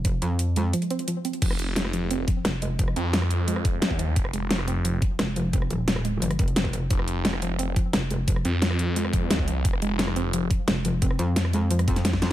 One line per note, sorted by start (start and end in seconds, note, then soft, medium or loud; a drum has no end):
0.00 0.21 F1 medium
0.05 0.10 F3 medium
0.05 kick loud
0.05 closed hi-hat medium
0.22 0.73 F2 medium
0.22 0.34 F3 medium
0.22 closed hi-hat medium
0.39 closed hi-hat medium
0.56 0.65 G#3 medium
0.56 closed hi-hat medium
0.73 0.86 F3 medium
0.73 closed hi-hat loud
0.82 closed hi-hat soft
0.90 0.99 C4 loud
0.90 closed hi-hat medium
0.99 closed hi-hat soft
1.08 1.16 F3 medium
1.08 closed hi-hat medium
1.25 1.33 C4 medium
1.25 closed hi-hat medium
1.33 closed hi-hat soft
1.42 2.26 F1 medium
1.42 1.55 F3 medium
1.42 kick loud
1.42 closed hi-hat medium
1.42 crash medium
1.51 cross-stick soft
1.59 closed hi-hat medium
1.76 1.85 G#3 medium
1.76 snare loud
1.76 closed hi-hat medium
1.85 cross-stick soft
1.93 2.06 F3 medium
1.93 closed hi-hat medium
2.11 2.16 C4 medium
2.11 closed hi-hat loud
2.28 2.40 F3 medium
2.28 kick loud
2.28 closed hi-hat medium
2.45 2.95 F1 medium
2.45 snare loud
2.45 closed hi-hat loud
2.62 2.70 G#3 medium
2.62 closed hi-hat medium
2.79 2.92 F3 medium
2.79 kick loud
2.79 closed hi-hat medium
2.88 cross-stick soft
2.96 3.80 F2 loud
2.96 3.01 C4 medium
2.96 closed hi-hat medium
3.13 3.26 F3 medium
3.13 snare loud
3.13 closed hi-hat medium
3.22 cross-stick soft
3.31 closed hi-hat medium
3.48 3.56 G#3 medium
3.48 closed hi-hat medium
3.56 cross-stick soft
3.65 3.77 F3 medium
3.65 kick loud
3.65 closed hi-hat medium
3.80 4.03 E2 loud
3.80 3.87 C4 medium
3.80 snare loud
3.80 closed hi-hat medium
3.91 kick medium
3.99 4.12 F3 medium
3.99 closed hi-hat medium
4.03 4.15 D#2 loud
4.16 5.01 F1 medium
4.16 kick loud
4.16 closed hi-hat medium
4.25 cross-stick soft
4.33 4.42 G#3 medium
4.33 closed hi-hat medium
4.51 4.63 F3 medium
4.51 snare loud
4.51 closed hi-hat medium
4.59 cross-stick soft
4.68 4.73 C4 medium
4.68 closed hi-hat medium
4.85 4.97 F3 medium
4.85 closed hi-hat medium
5.02 kick loud
5.02 closed hi-hat medium
5.19 5.69 F1 medium
5.19 5.27 G#3 medium
5.19 snare loud
5.19 closed hi-hat medium
5.36 5.49 F3 medium
5.36 closed hi-hat medium
5.53 5.58 C4 medium
5.53 kick loud
5.53 closed hi-hat medium
5.62 cross-stick soft
5.71 6.21 D#1 medium
5.71 5.83 F3 medium
5.71 closed hi-hat medium
5.88 snare loud
5.88 closed hi-hat medium
5.96 cross-stick soft
6.05 6.13 G#3 medium
6.05 closed hi-hat medium
6.22 6.38 G1 medium
6.22 6.34 F3 medium
6.22 closed hi-hat medium
6.31 cross-stick soft
6.31 closed hi-hat soft
6.39 6.72 F1 medium
6.39 6.47 C4 medium
6.39 kick loud
6.39 closed hi-hat medium
6.48 closed hi-hat soft
6.56 6.69 C4 medium
6.56 snare loud
6.56 closed hi-hat medium
6.65 kick medium
6.73 6.89 F1 loud
6.73 closed hi-hat medium
6.91 7.75 F1 medium
6.91 7.03 F3 medium
6.91 kick loud
6.91 closed hi-hat medium
6.99 cross-stick soft
7.08 closed hi-hat medium
7.25 7.33 G#3 medium
7.25 snare loud
7.25 closed hi-hat medium
7.33 cross-stick soft
7.42 7.55 F3 medium
7.42 closed hi-hat medium
7.59 7.64 C4 medium
7.59 closed hi-hat medium
7.76 7.89 F3 medium
7.76 kick loud
7.76 closed hi-hat medium
7.93 8.43 F1 loud
7.93 snare loud
7.93 closed hi-hat medium
8.11 8.19 G#3 medium
8.11 closed hi-hat medium
8.28 8.40 F3 medium
8.28 kick loud
8.28 closed hi-hat medium
8.36 cross-stick soft
8.45 9.63 F2 loud
8.45 8.50 C4 medium
8.45 closed hi-hat medium
8.62 8.75 F3 medium
8.62 snare loud
8.62 closed hi-hat medium
8.71 cross-stick soft
8.79 closed hi-hat medium
8.96 9.05 G#3 medium
8.96 closed hi-hat medium
9.05 cross-stick soft
9.13 9.26 F3 medium
9.13 kick loud
9.13 closed hi-hat medium
9.31 9.36 C4 medium
9.31 snare loud
9.31 closed hi-hat medium
9.39 kick medium
9.48 9.60 F3 medium
9.48 closed hi-hat medium
9.65 10.49 F1 medium
9.65 kick loud
9.65 closed hi-hat medium
9.73 cross-stick soft
9.82 9.90 G#3 medium
9.82 closed hi-hat medium
9.99 10.12 F3 medium
9.99 snare loud
9.99 closed hi-hat medium
10.08 cross-stick soft
10.16 10.21 C4 medium
10.16 closed hi-hat medium
10.33 10.46 F3 medium
10.33 closed hi-hat medium
10.51 kick loud
10.51 closed hi-hat medium
10.68 11.18 F1 loud
10.68 10.76 G#3 medium
10.68 snare loud
10.68 closed hi-hat medium
10.85 10.97 F3 medium
10.85 closed hi-hat medium
11.02 11.07 C4 medium
11.02 kick loud
11.02 closed hi-hat medium
11.11 cross-stick soft
11.19 12.33 F2 loud
11.19 11.32 F3 medium
11.19 closed hi-hat medium
11.36 snare loud
11.36 closed hi-hat loud
11.45 cross-stick soft
11.53 11.62 G#3 medium
11.53 closed hi-hat medium
11.71 11.83 F3 medium
11.71 closed hi-hat medium
11.79 cross-stick medium
11.79 closed hi-hat soft
11.88 11.96 C4 loud
11.88 kick loud
11.88 closed hi-hat medium
11.96 snare soft
11.96 closed hi-hat soft
12.05 12.13 F3 medium
12.05 snare loud
12.05 closed hi-hat medium
12.13 kick medium
12.13 snare medium
12.22 12.30 C4 medium
12.22 snare medium
12.22 closed hi-hat medium